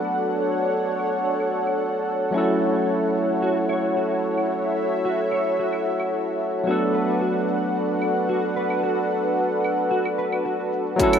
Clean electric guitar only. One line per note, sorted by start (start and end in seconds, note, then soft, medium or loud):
2.34 2.60 F#4 medium
3.42 3.57 F#4 medium
3.70 3.94 C#5 medium
3.97 4.23 F#4 medium
5.05 5.20 F#4 medium
5.32 5.56 C#5 medium
5.59 5.85 F#4 medium
6.67 6.82 F#4 medium
6.94 7.18 B4 medium
7.21 7.47 F#4 medium
8.29 8.44 F#4 medium
8.56 8.81 B4 medium
8.83 9.09 F#4 medium
9.91 10.06 F#4 loud
10.18 10.43 B4 medium
10.45 10.71 F#4 medium
11.00 11.19 F#4 medium